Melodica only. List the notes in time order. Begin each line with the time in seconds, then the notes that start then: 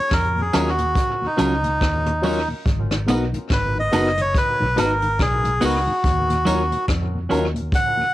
Already playing: C#5
0.13 A#4
0.41 G#4
0.69 F#4
1.26 D#4
3.53 B4
3.79 D#5
4.22 C#5
4.38 B4
4.79 A#4
5.22 G#4
5.64 F#4
7.75 F#5